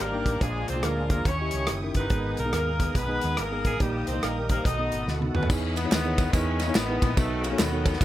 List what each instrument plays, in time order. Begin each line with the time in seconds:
Already playing: tonewheel organ D#3 G3 A#3 G4 D5, string section G5 A#5 D6
0.00 fingered electric bass G#1, horn section A#3 D4 G4 A#4, alto saxophone A#4
0.12 tine electric piano A#3 D4 D#4 A#4
0.26 fingered electric bass A1, kick, closed hi-hat
0.40 fingered electric bass A#1, tine electric piano A#2 A#3 D4 F4 G#4, tonewheel organ F3 G#3 D4 G#4, horn section G#3 D4 F4 G#4, alto saxophone G#4, string section F5 G#5, kick, closed hi-hat
0.68 fingered electric bass C2, horn section C4 C5, alto saxophone C5, closed hi-hat
0.75 tine electric piano A#3 D4 F4 G#4
0.83 fingered electric bass D2, horn section A#3 A#4, alto saxophone A#4, cross-stick, closed hi-hat
1.10 tine electric piano A#3 D4 F4 G#4, horn section A#3 A#4, alto saxophone A#4, kick, closed hi-hat
1.25 fingered electric bass D#2, tonewheel organ D#3 C#4 E4 G4, tine electric piano D#3, horn section C#4 E4 G4 C#5, string section E4 G5 C#6 D#6, alto saxophone C#5, kick, closed hi-hat
1.40 tine electric piano C#4 E4 G4 D#5
1.51 fingered electric bass C#2, closed hi-hat
1.67 fingered electric bass F#1, cross-stick, closed hi-hat
1.82 tine electric piano C#4 D#4 E4 A#4
1.95 fingered electric bass G1, horn section B3 D#4 B4, alto saxophone B4, kick, closed hi-hat
2.10 fingered electric bass G#1, tine electric piano G#2 B3 D#4 G#4 A#4, tonewheel organ D#3 G#3 B3 G#4, string section G#5 A#5 D#6, kick, closed hi-hat
2.37 fingered electric bass B1, horn section A#3 A#4, alto saxophone A#4, closed hi-hat
2.45 tine electric piano B3 D#4 G#4 A#4
2.53 fingered electric bass D#2, horn section A#3 D#4 A#4, alto saxophone A#4, cross-stick, closed hi-hat
2.80 tine electric piano B3 D#4 G#4 B4, kick, closed hi-hat
2.95 fingered electric bass B1, horn section B3 D#4 B4, alto saxophone B4, kick, closed hi-hat
3.08 tine electric piano B3 D#4 G#4 B4
3.21 fingered electric bass D#2, cross-stick, closed hi-hat
3.37 fingered electric bass G#1, horn section A#3 D#4 A#4, alto saxophone A#4, cross-stick, closed hi-hat
3.51 tine electric piano B3 D#4 G#4 A#4
3.65 fingered electric bass A1, alto saxophone G#4, kick, closed hi-hat
3.80 fingered electric bass A#1, tine electric piano A#2 A#3 D#4 G4 A#4, horn section G3 A#3 D#4 G4, tonewheel organ G3 G4 A#4, alto saxophone G4, string section D#5 G5, kick, closed hi-hat
4.07 fingered electric bass C2, horn section C4 C5, alto saxophone C5, closed hi-hat
4.15 tine electric piano A#3 D#4 G4 A#4
4.23 fingered electric bass A#1, horn section A#3 A#4, alto saxophone A#4, cross-stick, closed hi-hat
4.49 tine electric piano A#3 D#4 G4 C5, horn section A#3 A#4, alto saxophone A#4, kick, closed hi-hat
4.64 fingered electric bass B1, tine electric piano B2, tonewheel organ A3 B3 F#4 A4, horn section D#4 F#4 A4 D#5, alto saxophone D#5, string section F#5 A5 B5, kick, closed hi-hat
4.78 tine electric piano B3 D#4 F#4 A4
4.92 fingered electric bass G#1, closed hi-hat
5.08 fingered electric bass D2, snare
5.21 tine electric piano B3 D#4 F#4 A4, high tom
5.34 fingered electric bass D#2, horn section G#3 B3 C#4 B4, alto saxophone B4, mid tom
5.43 floor tom
5.49 fingered electric bass E2, tine electric piano E3 B3 D#4 E4 G#4 B4, tonewheel organ G#4 D#5 E5 B5, kick, crash, tambourine
5.75 horn section B3, ride bell, tambourine
5.84 tine electric piano B3 D#4 E4 G#4 C#5
5.91 fingered electric bass D#2, horn section D#3 G#3 B3, snare, clap, ride bell, tambourine
6.04 tine electric piano B3 D#4 E4 G#4 C#5
6.18 kick, ride bell, tambourine
6.31 fingered electric bass E2, horn section C#3 G#3 C#4, tine electric piano B3 D#4 E4 G#4 B4, kick, ride bell, tambourine
6.60 snare, ride bell, tambourine
6.68 tine electric piano B3 D#4 E4 G#4 C#5
6.74 fingered electric bass A1, horn section D#3 G#3 B3, snare, clap, ride bell, tambourine
6.88 tine electric piano B3 D#4 E4 G#4 B4
7.02 fingered electric bass A#1, kick, ride bell, tambourine
7.16 fingered electric bass B1, tine electric piano B2 B3 D#4 F#4 A4 B4, horn section D#3 F#3 A3, tonewheel organ A4 F#5, kick, ride bell, tambourine
7.43 horn section C#3 C#4, ride bell, tambourine
7.51 tine electric piano B3 D#4 F#4 A4 C#5
7.59 fingered electric bass D#2, horn section B3, snare, clap, ride bell, tambourine
7.72 tine electric piano B3 D#4 F#4 A4 C#5
7.86 horn section B3, kick, ride bell, tambourine
7.93 snare
7.99 fingered electric bass E2, horn section D3 F3 G#3 D4, tine electric piano D4 E4 F4, tonewheel organ G#4 E5 F5 D6, kick, ride bell, tambourine